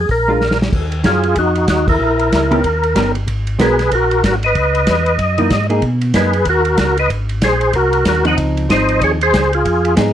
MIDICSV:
0, 0, Header, 1, 5, 480
1, 0, Start_track
1, 0, Key_signature, -6, "minor"
1, 0, Tempo, 318640
1, 1100, Time_signature, 4, 2, 24, 8
1, 15260, End_track
2, 0, Start_track
2, 0, Title_t, "Tonewheel organ"
2, 0, Program_c, 0, 16
2, 9, Note_on_c, 0, 68, 72
2, 144, Note_off_c, 0, 68, 0
2, 169, Note_on_c, 0, 70, 81
2, 873, Note_off_c, 0, 70, 0
2, 1590, Note_on_c, 0, 68, 81
2, 1599, Note_on_c, 0, 65, 64
2, 2035, Note_off_c, 0, 65, 0
2, 2077, Note_off_c, 0, 68, 0
2, 2088, Note_on_c, 0, 66, 90
2, 2091, Note_on_c, 0, 63, 66
2, 2521, Note_off_c, 0, 63, 0
2, 2541, Note_off_c, 0, 66, 0
2, 2553, Note_on_c, 0, 63, 66
2, 2559, Note_on_c, 0, 66, 74
2, 2817, Note_off_c, 0, 63, 0
2, 2821, Note_off_c, 0, 66, 0
2, 2852, Note_on_c, 0, 64, 73
2, 2852, Note_on_c, 0, 70, 86
2, 3926, Note_off_c, 0, 64, 0
2, 4698, Note_off_c, 0, 70, 0
2, 5441, Note_on_c, 0, 71, 74
2, 5456, Note_on_c, 0, 68, 60
2, 5883, Note_off_c, 0, 68, 0
2, 5921, Note_off_c, 0, 71, 0
2, 5923, Note_on_c, 0, 70, 93
2, 5949, Note_on_c, 0, 66, 70
2, 6369, Note_off_c, 0, 66, 0
2, 6395, Note_off_c, 0, 70, 0
2, 6413, Note_on_c, 0, 70, 81
2, 6442, Note_on_c, 0, 66, 70
2, 6535, Note_off_c, 0, 70, 0
2, 6558, Note_off_c, 0, 66, 0
2, 6692, Note_on_c, 0, 75, 92
2, 6717, Note_on_c, 0, 71, 72
2, 7779, Note_off_c, 0, 71, 0
2, 8539, Note_off_c, 0, 75, 0
2, 9276, Note_on_c, 0, 71, 71
2, 9280, Note_on_c, 0, 68, 61
2, 9715, Note_off_c, 0, 68, 0
2, 9760, Note_off_c, 0, 71, 0
2, 9780, Note_on_c, 0, 66, 70
2, 9792, Note_on_c, 0, 70, 97
2, 10205, Note_off_c, 0, 66, 0
2, 10234, Note_on_c, 0, 66, 65
2, 10237, Note_off_c, 0, 70, 0
2, 10255, Note_on_c, 0, 70, 80
2, 10497, Note_off_c, 0, 66, 0
2, 10509, Note_off_c, 0, 70, 0
2, 10532, Note_on_c, 0, 71, 64
2, 10538, Note_on_c, 0, 75, 94
2, 10695, Note_off_c, 0, 71, 0
2, 10698, Note_off_c, 0, 75, 0
2, 11205, Note_on_c, 0, 68, 56
2, 11209, Note_on_c, 0, 72, 85
2, 11638, Note_off_c, 0, 68, 0
2, 11676, Note_on_c, 0, 70, 99
2, 11687, Note_off_c, 0, 72, 0
2, 11690, Note_on_c, 0, 66, 76
2, 12121, Note_off_c, 0, 66, 0
2, 12147, Note_off_c, 0, 70, 0
2, 12165, Note_on_c, 0, 70, 74
2, 12180, Note_on_c, 0, 66, 68
2, 12424, Note_off_c, 0, 70, 0
2, 12432, Note_off_c, 0, 66, 0
2, 12455, Note_on_c, 0, 78, 95
2, 12467, Note_on_c, 0, 75, 63
2, 12617, Note_off_c, 0, 78, 0
2, 12624, Note_off_c, 0, 75, 0
2, 13120, Note_on_c, 0, 75, 95
2, 13134, Note_on_c, 0, 72, 80
2, 13564, Note_off_c, 0, 72, 0
2, 13603, Note_off_c, 0, 75, 0
2, 13609, Note_on_c, 0, 73, 119
2, 13617, Note_on_c, 0, 68, 92
2, 13734, Note_off_c, 0, 73, 0
2, 13740, Note_off_c, 0, 68, 0
2, 13898, Note_on_c, 0, 72, 123
2, 13904, Note_on_c, 0, 68, 74
2, 14335, Note_off_c, 0, 68, 0
2, 14377, Note_on_c, 0, 68, 86
2, 14379, Note_off_c, 0, 72, 0
2, 14381, Note_on_c, 0, 65, 66
2, 14986, Note_off_c, 0, 68, 0
2, 14989, Note_off_c, 0, 65, 0
2, 15260, End_track
3, 0, Start_track
3, 0, Title_t, "Hollow-body jazz guitar"
3, 0, Program_c, 1, 26
3, 423, Note_on_c, 1, 56, 58
3, 436, Note_on_c, 1, 62, 54
3, 446, Note_on_c, 1, 65, 64
3, 596, Note_off_c, 1, 56, 0
3, 603, Note_off_c, 1, 62, 0
3, 608, Note_off_c, 1, 65, 0
3, 1561, Note_on_c, 1, 51, 54
3, 1571, Note_on_c, 1, 61, 66
3, 1572, Note_on_c, 1, 54, 63
3, 1582, Note_on_c, 1, 65, 72
3, 1833, Note_off_c, 1, 51, 0
3, 1838, Note_off_c, 1, 54, 0
3, 1838, Note_off_c, 1, 61, 0
3, 1843, Note_off_c, 1, 65, 0
3, 3779, Note_on_c, 1, 51, 69
3, 3782, Note_on_c, 1, 59, 81
3, 3787, Note_on_c, 1, 61, 85
3, 3797, Note_on_c, 1, 67, 77
3, 3952, Note_off_c, 1, 51, 0
3, 3954, Note_off_c, 1, 59, 0
3, 3956, Note_off_c, 1, 61, 0
3, 3961, Note_off_c, 1, 67, 0
3, 4451, Note_on_c, 1, 51, 55
3, 4457, Note_on_c, 1, 59, 61
3, 4463, Note_on_c, 1, 61, 63
3, 4468, Note_on_c, 1, 67, 64
3, 4716, Note_off_c, 1, 51, 0
3, 4719, Note_off_c, 1, 59, 0
3, 4722, Note_off_c, 1, 61, 0
3, 4724, Note_off_c, 1, 67, 0
3, 5404, Note_on_c, 1, 56, 56
3, 5410, Note_on_c, 1, 59, 59
3, 5423, Note_on_c, 1, 66, 56
3, 5424, Note_on_c, 1, 70, 61
3, 5672, Note_off_c, 1, 56, 0
3, 5675, Note_off_c, 1, 59, 0
3, 5682, Note_off_c, 1, 66, 0
3, 5682, Note_off_c, 1, 70, 0
3, 8107, Note_on_c, 1, 52, 76
3, 8117, Note_on_c, 1, 58, 77
3, 8121, Note_on_c, 1, 63, 78
3, 8275, Note_off_c, 1, 52, 0
3, 8280, Note_off_c, 1, 58, 0
3, 8282, Note_off_c, 1, 63, 0
3, 8579, Note_on_c, 1, 58, 62
3, 8586, Note_on_c, 1, 63, 69
3, 8597, Note_on_c, 1, 68, 64
3, 8752, Note_off_c, 1, 58, 0
3, 8755, Note_off_c, 1, 63, 0
3, 8760, Note_off_c, 1, 68, 0
3, 9250, Note_on_c, 1, 58, 48
3, 9257, Note_on_c, 1, 63, 49
3, 9266, Note_on_c, 1, 68, 45
3, 9515, Note_off_c, 1, 58, 0
3, 9519, Note_off_c, 1, 63, 0
3, 9523, Note_off_c, 1, 68, 0
3, 12414, Note_on_c, 1, 53, 63
3, 12431, Note_on_c, 1, 60, 73
3, 12433, Note_on_c, 1, 63, 68
3, 13052, Note_off_c, 1, 53, 0
3, 13061, Note_off_c, 1, 60, 0
3, 13062, Note_off_c, 1, 63, 0
3, 13094, Note_on_c, 1, 53, 71
3, 13103, Note_on_c, 1, 60, 73
3, 13114, Note_on_c, 1, 63, 78
3, 13810, Note_off_c, 1, 53, 0
3, 13815, Note_off_c, 1, 60, 0
3, 13820, Note_off_c, 1, 63, 0
3, 15008, Note_on_c, 1, 53, 55
3, 15014, Note_on_c, 1, 59, 53
3, 15023, Note_on_c, 1, 63, 62
3, 15027, Note_on_c, 1, 68, 67
3, 15260, Note_off_c, 1, 53, 0
3, 15260, Note_off_c, 1, 59, 0
3, 15260, Note_off_c, 1, 63, 0
3, 15260, Note_off_c, 1, 68, 0
3, 15260, End_track
4, 0, Start_track
4, 0, Title_t, "Tonewheel organ"
4, 0, Program_c, 2, 16
4, 142, Note_on_c, 2, 34, 83
4, 1052, Note_off_c, 2, 34, 0
4, 1096, Note_on_c, 2, 39, 81
4, 1563, Note_off_c, 2, 39, 0
4, 1570, Note_on_c, 2, 42, 91
4, 2039, Note_off_c, 2, 42, 0
4, 2052, Note_on_c, 2, 41, 87
4, 2520, Note_off_c, 2, 41, 0
4, 2528, Note_on_c, 2, 39, 88
4, 2998, Note_off_c, 2, 39, 0
4, 3014, Note_on_c, 2, 34, 79
4, 3480, Note_off_c, 2, 34, 0
4, 3501, Note_on_c, 2, 37, 98
4, 3963, Note_off_c, 2, 37, 0
4, 3981, Note_on_c, 2, 39, 84
4, 4443, Note_off_c, 2, 39, 0
4, 4462, Note_on_c, 2, 31, 95
4, 4924, Note_off_c, 2, 31, 0
4, 4933, Note_on_c, 2, 32, 96
4, 5399, Note_off_c, 2, 32, 0
4, 5420, Note_on_c, 2, 35, 98
4, 5882, Note_off_c, 2, 35, 0
4, 5903, Note_on_c, 2, 34, 85
4, 6364, Note_off_c, 2, 34, 0
4, 6383, Note_on_c, 2, 32, 92
4, 6844, Note_off_c, 2, 32, 0
4, 6860, Note_on_c, 2, 37, 85
4, 7322, Note_off_c, 2, 37, 0
4, 7338, Note_on_c, 2, 40, 100
4, 7802, Note_off_c, 2, 40, 0
4, 7819, Note_on_c, 2, 42, 81
4, 8282, Note_off_c, 2, 42, 0
4, 8297, Note_on_c, 2, 44, 88
4, 8761, Note_off_c, 2, 44, 0
4, 8772, Note_on_c, 2, 47, 87
4, 9239, Note_off_c, 2, 47, 0
4, 9257, Note_on_c, 2, 42, 98
4, 9722, Note_off_c, 2, 42, 0
4, 9728, Note_on_c, 2, 39, 81
4, 10197, Note_off_c, 2, 39, 0
4, 10214, Note_on_c, 2, 37, 81
4, 10680, Note_off_c, 2, 37, 0
4, 10702, Note_on_c, 2, 32, 85
4, 11165, Note_off_c, 2, 32, 0
4, 11175, Note_on_c, 2, 34, 95
4, 11641, Note_off_c, 2, 34, 0
4, 11652, Note_on_c, 2, 36, 85
4, 12120, Note_off_c, 2, 36, 0
4, 12136, Note_on_c, 2, 39, 91
4, 12602, Note_off_c, 2, 39, 0
4, 12622, Note_on_c, 2, 37, 92
4, 13086, Note_off_c, 2, 37, 0
4, 13100, Note_on_c, 2, 32, 97
4, 13565, Note_off_c, 2, 32, 0
4, 13581, Note_on_c, 2, 39, 81
4, 14046, Note_off_c, 2, 39, 0
4, 14059, Note_on_c, 2, 37, 95
4, 14525, Note_off_c, 2, 37, 0
4, 14541, Note_on_c, 2, 41, 85
4, 15006, Note_off_c, 2, 41, 0
4, 15016, Note_on_c, 2, 44, 100
4, 15260, Note_off_c, 2, 44, 0
4, 15260, End_track
5, 0, Start_track
5, 0, Title_t, "Drums"
5, 134, Note_on_c, 9, 46, 43
5, 139, Note_on_c, 9, 36, 33
5, 285, Note_off_c, 9, 46, 0
5, 289, Note_off_c, 9, 36, 0
5, 616, Note_on_c, 9, 38, 43
5, 767, Note_off_c, 9, 38, 0
5, 773, Note_on_c, 9, 38, 63
5, 924, Note_off_c, 9, 38, 0
5, 936, Note_on_c, 9, 38, 73
5, 1086, Note_off_c, 9, 38, 0
5, 1093, Note_on_c, 9, 36, 62
5, 1094, Note_on_c, 9, 49, 68
5, 1244, Note_off_c, 9, 36, 0
5, 1244, Note_off_c, 9, 49, 0
5, 1382, Note_on_c, 9, 51, 47
5, 1533, Note_off_c, 9, 51, 0
5, 1568, Note_on_c, 9, 44, 50
5, 1568, Note_on_c, 9, 51, 69
5, 1573, Note_on_c, 9, 36, 21
5, 1574, Note_on_c, 9, 38, 64
5, 1719, Note_off_c, 9, 44, 0
5, 1719, Note_off_c, 9, 51, 0
5, 1723, Note_off_c, 9, 36, 0
5, 1725, Note_off_c, 9, 38, 0
5, 1860, Note_on_c, 9, 51, 43
5, 2011, Note_off_c, 9, 51, 0
5, 2043, Note_on_c, 9, 51, 63
5, 2053, Note_on_c, 9, 36, 22
5, 2193, Note_off_c, 9, 51, 0
5, 2204, Note_off_c, 9, 36, 0
5, 2342, Note_on_c, 9, 51, 46
5, 2492, Note_off_c, 9, 51, 0
5, 2526, Note_on_c, 9, 44, 64
5, 2526, Note_on_c, 9, 51, 66
5, 2532, Note_on_c, 9, 38, 68
5, 2533, Note_on_c, 9, 36, 24
5, 2677, Note_off_c, 9, 44, 0
5, 2677, Note_off_c, 9, 51, 0
5, 2683, Note_off_c, 9, 38, 0
5, 2684, Note_off_c, 9, 36, 0
5, 2827, Note_on_c, 9, 49, 65
5, 2828, Note_on_c, 9, 36, 77
5, 2978, Note_off_c, 9, 49, 0
5, 2979, Note_off_c, 9, 36, 0
5, 3305, Note_on_c, 9, 51, 43
5, 3456, Note_off_c, 9, 51, 0
5, 3500, Note_on_c, 9, 36, 20
5, 3501, Note_on_c, 9, 44, 54
5, 3501, Note_on_c, 9, 51, 68
5, 3508, Note_on_c, 9, 38, 68
5, 3650, Note_off_c, 9, 36, 0
5, 3652, Note_off_c, 9, 44, 0
5, 3652, Note_off_c, 9, 51, 0
5, 3658, Note_off_c, 9, 38, 0
5, 3788, Note_on_c, 9, 51, 46
5, 3938, Note_off_c, 9, 51, 0
5, 3977, Note_on_c, 9, 51, 59
5, 3980, Note_on_c, 9, 36, 26
5, 4128, Note_off_c, 9, 51, 0
5, 4131, Note_off_c, 9, 36, 0
5, 4269, Note_on_c, 9, 51, 45
5, 4420, Note_off_c, 9, 51, 0
5, 4454, Note_on_c, 9, 44, 53
5, 4454, Note_on_c, 9, 51, 70
5, 4459, Note_on_c, 9, 36, 18
5, 4460, Note_on_c, 9, 38, 73
5, 4605, Note_off_c, 9, 44, 0
5, 4605, Note_off_c, 9, 51, 0
5, 4610, Note_off_c, 9, 36, 0
5, 4611, Note_off_c, 9, 38, 0
5, 4747, Note_on_c, 9, 51, 43
5, 4897, Note_off_c, 9, 51, 0
5, 4936, Note_on_c, 9, 51, 59
5, 4938, Note_on_c, 9, 36, 21
5, 5087, Note_off_c, 9, 51, 0
5, 5088, Note_off_c, 9, 36, 0
5, 5226, Note_on_c, 9, 51, 47
5, 5377, Note_off_c, 9, 51, 0
5, 5413, Note_on_c, 9, 44, 53
5, 5413, Note_on_c, 9, 51, 69
5, 5418, Note_on_c, 9, 36, 20
5, 5419, Note_on_c, 9, 38, 77
5, 5564, Note_off_c, 9, 44, 0
5, 5564, Note_off_c, 9, 51, 0
5, 5569, Note_off_c, 9, 36, 0
5, 5570, Note_off_c, 9, 38, 0
5, 5709, Note_on_c, 9, 51, 49
5, 5715, Note_on_c, 9, 38, 34
5, 5860, Note_off_c, 9, 51, 0
5, 5866, Note_off_c, 9, 38, 0
5, 5897, Note_on_c, 9, 51, 65
5, 5900, Note_on_c, 9, 36, 21
5, 6048, Note_off_c, 9, 51, 0
5, 6051, Note_off_c, 9, 36, 0
5, 6193, Note_on_c, 9, 51, 45
5, 6344, Note_off_c, 9, 51, 0
5, 6382, Note_on_c, 9, 36, 27
5, 6383, Note_on_c, 9, 44, 59
5, 6383, Note_on_c, 9, 51, 68
5, 6389, Note_on_c, 9, 38, 75
5, 6533, Note_off_c, 9, 36, 0
5, 6534, Note_off_c, 9, 44, 0
5, 6534, Note_off_c, 9, 51, 0
5, 6540, Note_off_c, 9, 38, 0
5, 6670, Note_on_c, 9, 51, 46
5, 6820, Note_off_c, 9, 51, 0
5, 6856, Note_on_c, 9, 51, 52
5, 6859, Note_on_c, 9, 36, 27
5, 7007, Note_off_c, 9, 51, 0
5, 7010, Note_off_c, 9, 36, 0
5, 7150, Note_on_c, 9, 51, 46
5, 7300, Note_off_c, 9, 51, 0
5, 7331, Note_on_c, 9, 44, 53
5, 7331, Note_on_c, 9, 51, 69
5, 7337, Note_on_c, 9, 38, 67
5, 7338, Note_on_c, 9, 36, 23
5, 7481, Note_off_c, 9, 44, 0
5, 7481, Note_off_c, 9, 51, 0
5, 7487, Note_off_c, 9, 38, 0
5, 7488, Note_off_c, 9, 36, 0
5, 7624, Note_on_c, 9, 51, 45
5, 7775, Note_off_c, 9, 51, 0
5, 7813, Note_on_c, 9, 51, 62
5, 7816, Note_on_c, 9, 36, 20
5, 7964, Note_off_c, 9, 51, 0
5, 7967, Note_off_c, 9, 36, 0
5, 8101, Note_on_c, 9, 51, 49
5, 8252, Note_off_c, 9, 51, 0
5, 8291, Note_on_c, 9, 44, 59
5, 8291, Note_on_c, 9, 51, 67
5, 8295, Note_on_c, 9, 36, 29
5, 8297, Note_on_c, 9, 38, 71
5, 8441, Note_off_c, 9, 44, 0
5, 8441, Note_off_c, 9, 51, 0
5, 8445, Note_off_c, 9, 36, 0
5, 8447, Note_off_c, 9, 38, 0
5, 8584, Note_on_c, 9, 51, 47
5, 8735, Note_off_c, 9, 51, 0
5, 8767, Note_on_c, 9, 51, 53
5, 8773, Note_on_c, 9, 36, 22
5, 8917, Note_off_c, 9, 51, 0
5, 8924, Note_off_c, 9, 36, 0
5, 9059, Note_on_c, 9, 51, 51
5, 9210, Note_off_c, 9, 51, 0
5, 9245, Note_on_c, 9, 44, 56
5, 9245, Note_on_c, 9, 51, 74
5, 9251, Note_on_c, 9, 36, 20
5, 9251, Note_on_c, 9, 38, 68
5, 9396, Note_off_c, 9, 44, 0
5, 9396, Note_off_c, 9, 51, 0
5, 9402, Note_off_c, 9, 36, 0
5, 9402, Note_off_c, 9, 38, 0
5, 9540, Note_on_c, 9, 51, 47
5, 9691, Note_off_c, 9, 51, 0
5, 9720, Note_on_c, 9, 51, 63
5, 9729, Note_on_c, 9, 36, 18
5, 9871, Note_off_c, 9, 51, 0
5, 9880, Note_off_c, 9, 36, 0
5, 10015, Note_on_c, 9, 51, 48
5, 10166, Note_off_c, 9, 51, 0
5, 10206, Note_on_c, 9, 44, 52
5, 10206, Note_on_c, 9, 51, 76
5, 10212, Note_on_c, 9, 36, 21
5, 10212, Note_on_c, 9, 38, 77
5, 10357, Note_off_c, 9, 44, 0
5, 10357, Note_off_c, 9, 51, 0
5, 10363, Note_off_c, 9, 36, 0
5, 10363, Note_off_c, 9, 38, 0
5, 10507, Note_on_c, 9, 51, 47
5, 10658, Note_off_c, 9, 51, 0
5, 10696, Note_on_c, 9, 36, 21
5, 10697, Note_on_c, 9, 51, 58
5, 10847, Note_off_c, 9, 36, 0
5, 10848, Note_off_c, 9, 51, 0
5, 10986, Note_on_c, 9, 51, 46
5, 11136, Note_off_c, 9, 51, 0
5, 11172, Note_on_c, 9, 44, 55
5, 11172, Note_on_c, 9, 51, 76
5, 11174, Note_on_c, 9, 36, 19
5, 11178, Note_on_c, 9, 38, 70
5, 11322, Note_off_c, 9, 44, 0
5, 11322, Note_off_c, 9, 51, 0
5, 11325, Note_off_c, 9, 36, 0
5, 11328, Note_off_c, 9, 38, 0
5, 11463, Note_on_c, 9, 51, 43
5, 11613, Note_off_c, 9, 51, 0
5, 11649, Note_on_c, 9, 51, 57
5, 11656, Note_on_c, 9, 36, 20
5, 11800, Note_off_c, 9, 51, 0
5, 11807, Note_off_c, 9, 36, 0
5, 11942, Note_on_c, 9, 51, 51
5, 12093, Note_off_c, 9, 51, 0
5, 12130, Note_on_c, 9, 44, 68
5, 12130, Note_on_c, 9, 51, 79
5, 12136, Note_on_c, 9, 38, 70
5, 12137, Note_on_c, 9, 36, 19
5, 12281, Note_off_c, 9, 44, 0
5, 12281, Note_off_c, 9, 51, 0
5, 12287, Note_off_c, 9, 38, 0
5, 12288, Note_off_c, 9, 36, 0
5, 12424, Note_on_c, 9, 51, 48
5, 12575, Note_off_c, 9, 51, 0
5, 12618, Note_on_c, 9, 51, 65
5, 12621, Note_on_c, 9, 36, 22
5, 12769, Note_off_c, 9, 51, 0
5, 12772, Note_off_c, 9, 36, 0
5, 12914, Note_on_c, 9, 51, 45
5, 13065, Note_off_c, 9, 51, 0
5, 13102, Note_on_c, 9, 36, 28
5, 13105, Note_on_c, 9, 44, 49
5, 13105, Note_on_c, 9, 51, 73
5, 13111, Note_on_c, 9, 38, 70
5, 13253, Note_off_c, 9, 36, 0
5, 13256, Note_off_c, 9, 44, 0
5, 13256, Note_off_c, 9, 51, 0
5, 13262, Note_off_c, 9, 38, 0
5, 13385, Note_on_c, 9, 51, 46
5, 13536, Note_off_c, 9, 51, 0
5, 13580, Note_on_c, 9, 51, 65
5, 13581, Note_on_c, 9, 36, 27
5, 13730, Note_off_c, 9, 51, 0
5, 13732, Note_off_c, 9, 36, 0
5, 13877, Note_on_c, 9, 51, 49
5, 14028, Note_off_c, 9, 51, 0
5, 14063, Note_on_c, 9, 36, 25
5, 14064, Note_on_c, 9, 44, 63
5, 14064, Note_on_c, 9, 51, 65
5, 14070, Note_on_c, 9, 38, 77
5, 14214, Note_off_c, 9, 36, 0
5, 14215, Note_off_c, 9, 44, 0
5, 14215, Note_off_c, 9, 51, 0
5, 14221, Note_off_c, 9, 38, 0
5, 14355, Note_on_c, 9, 51, 44
5, 14506, Note_off_c, 9, 51, 0
5, 14542, Note_on_c, 9, 51, 63
5, 14543, Note_on_c, 9, 36, 22
5, 14693, Note_off_c, 9, 51, 0
5, 14694, Note_off_c, 9, 36, 0
5, 14834, Note_on_c, 9, 51, 50
5, 14984, Note_off_c, 9, 51, 0
5, 15015, Note_on_c, 9, 44, 58
5, 15015, Note_on_c, 9, 51, 75
5, 15019, Note_on_c, 9, 36, 21
5, 15021, Note_on_c, 9, 38, 70
5, 15165, Note_off_c, 9, 44, 0
5, 15165, Note_off_c, 9, 51, 0
5, 15169, Note_off_c, 9, 36, 0
5, 15171, Note_off_c, 9, 38, 0
5, 15260, End_track
0, 0, End_of_file